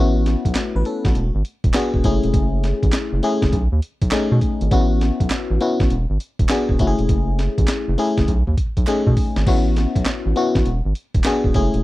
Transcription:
Already playing: analog synth bass A1, fm electric piano B3 C#4 E4 F#4
0.26 snare, closed hi-hat
0.45 analog synth bass B1, kick, closed hi-hat
0.55 fm electric piano A3 F#4, snare, clap, closed hi-hat
0.76 analog synth bass A1, fm electric piano B4
0.85 fm electric piano C#4 A4, closed hi-hat
1.05 analog synth bass A1, fm electric piano A3 F#4, kick, snare, closed hi-hat
1.15 analog synth bass E1, closed hi-hat
1.35 analog synth bass G#1
1.45 closed hi-hat
1.64 analog synth bass E1, kick, closed hi-hat
1.74 fm electric piano B3 D4 F#4 G#4, snare, clap, closed hi-hat
1.94 analog synth bass E1, kick
2.04 analog synth bass F#1, fm electric piano A3 C#4 E4 G#4, kick, closed hi-hat
2.23 analog synth bass E1, closed hi-hat
2.34 analog synth bass F#1, kick, closed hi-hat
2.64 snare, closed hi-hat
2.83 analog synth bass A1, kick, closed hi-hat
2.92 snare, clap, closed hi-hat
3.13 analog synth bass F#1
3.23 fm electric piano A3 C#4 E4 G#4, closed hi-hat
3.42 analog synth bass F#1, kick, snare, closed hi-hat
3.52 analog synth bass B1, kick, closed hi-hat
3.72 analog synth bass D#2
3.82 closed hi-hat
4.02 analog synth bass B1, kick, closed hi-hat
4.11 fm electric piano A3 C#4 D#4 G#4, snare, clap, closed hi-hat
4.32 analog synth bass B2
4.41 kick, closed hi-hat
4.61 analog synth bass G#1, closed hi-hat
4.71 analog synth bass A1, fm electric piano B3 C#4 E4 F#4, kick, closed hi-hat
5.01 snare, closed hi-hat
5.20 analog synth bass B1, kick, closed hi-hat
5.30 snare, clap, closed hi-hat
5.51 analog synth bass A1
5.61 fm electric piano B3 C#4 E4 F#4, closed hi-hat
5.80 analog synth bass A1, kick, snare, closed hi-hat
5.90 analog synth bass E1, closed hi-hat
6.10 analog synth bass G#1
6.20 closed hi-hat
6.39 analog synth bass E1, kick, closed hi-hat
6.49 fm electric piano B3 D4 F#4 G#4, snare, clap, closed hi-hat
6.69 analog synth bass E1, kick
6.79 analog synth bass F#1, fm electric piano A3 C#4 E4 F#4, kick, closed hi-hat
6.87 fm electric piano G#4
6.99 analog synth bass E1, closed hi-hat
7.09 analog synth bass F#1, kick, closed hi-hat
7.39 snare, closed hi-hat
7.58 analog synth bass A1, kick, closed hi-hat
7.67 snare, clap, closed hi-hat
7.88 analog synth bass F#1
7.98 fm electric piano A3 C#4 E4 G#4, open hi-hat
8.17 analog synth bass F#1, kick, snare, closed hi-hat
8.28 analog synth bass B1, kick, closed hi-hat
8.47 analog synth bass D#2, kick
8.57 kick, closed hi-hat
8.77 analog synth bass B1, kick, closed hi-hat
8.87 fm electric piano A3 C#4 D#4 G#4, clap, closed hi-hat
9.07 analog synth bass B2, kick
9.17 kick, open hi-hat
9.36 analog synth bass G#1, snare, closed hi-hat
9.47 analog synth bass A1, fm electric piano B3 C#4 E4 F#4, kick, crash
9.76 snare, closed hi-hat
9.96 analog synth bass B1, kick, closed hi-hat
10.05 snare, clap, closed hi-hat
10.26 analog synth bass A1
10.36 fm electric piano B3 C#4 E4 F#4, closed hi-hat
10.55 analog synth bass A1, kick, snare, closed hi-hat
10.66 analog synth bass E1, closed hi-hat
10.85 analog synth bass G#1
10.95 closed hi-hat
11.14 analog synth bass E1, kick, closed hi-hat
11.24 fm electric piano B3 D4 F#4 G#4, snare, clap, closed hi-hat
11.44 analog synth bass E1, kick
11.54 analog synth bass F#1, fm electric piano A3 C#4 E4 G#4, kick, closed hi-hat
11.74 analog synth bass E1, closed hi-hat

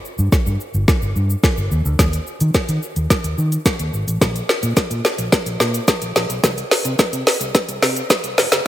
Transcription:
0.05 shaker
0.18 fingered electric bass G2, shaker
0.32 muted fingered electric bass stroke, kick, snare, shaker
0.47 fingered electric bass G2, shaker
0.60 shaker
0.74 fingered electric bass G1, shaker
0.88 kick, snare, shaker
1.02 fingered electric bass G1, shaker
1.16 fingered electric bass G2, shaker
1.30 shaker
1.44 kick, snare, shaker
1.57 fingered electric bass G1, shaker
1.71 fingered electric bass D#2, shaker
1.85 fingered electric bass D2, shaker
1.99 fingered electric bass D#2, kick, snare, closed hi-hat, shaker
2.13 closed hi-hat, shaker
2.27 shaker
2.40 fingered electric bass D#3, closed hi-hat, shaker
2.54 kick, snare, closed hi-hat, shaker
2.69 fingered electric bass D#3, closed hi-hat, shaker
2.83 shaker
2.96 fingered electric bass D#2, closed hi-hat, shaker
3.10 kick, snare, closed hi-hat, shaker
3.24 fingered electric bass D#2, closed hi-hat, shaker
3.38 fingered electric bass D#3, shaker
3.52 closed hi-hat, shaker
3.66 kick, snare, closed hi-hat, shaker
3.79 fingered electric bass D#2, closed hi-hat, shaker
3.93 fingered electric bass G#1, shaker
4.07 fingered electric bass A1, closed hi-hat, shaker
4.21 fingered electric bass A#1, kick, snare, closed hi-hat, shaker
4.36 closed hi-hat, shaker
4.49 snare, shaker
4.63 fingered electric bass A#2, closed hi-hat, shaker
4.77 kick, snare, closed hi-hat, shaker
4.91 fingered electric bass A#2, closed hi-hat, shaker
5.05 snare, shaker
5.18 fingered electric bass A#1, closed hi-hat, shaker
5.32 kick, snare, closed hi-hat, shaker
5.46 fingered electric bass A#1, closed hi-hat, shaker
5.60 fingered electric bass A#2, snare, shaker
5.74 closed hi-hat, shaker
5.88 kick, snare, closed hi-hat, shaker
6.02 fingered electric bass A#1, closed hi-hat, shaker
6.16 fingered electric bass A#1, snare, shaker
6.30 fingered electric bass B1, closed hi-hat, shaker
6.44 fingered electric bass C2, kick, snare, closed hi-hat, shaker
6.58 closed hi-hat, shaker
6.71 snare, open hi-hat, shaker
6.85 fingered electric bass C3, closed hi-hat, shaker
6.99 kick, snare, closed hi-hat, shaker
7.13 fingered electric bass C3, closed hi-hat, shaker
7.27 snare, open hi-hat, shaker
7.41 fingered electric bass C2, closed hi-hat, shaker
7.55 kick, snare, closed hi-hat, shaker
7.69 fingered electric bass C2, closed hi-hat, shaker
7.82 fingered electric bass C3, snare, open hi-hat, shaker
7.96 closed hi-hat, shaker
8.10 kick, snare, closed hi-hat, shaker
8.24 fingered electric bass C2, closed hi-hat, shaker
8.38 fingered electric bass F1, snare, open hi-hat, shaker
8.52 fingered electric bass F#1, snare, closed hi-hat, shaker

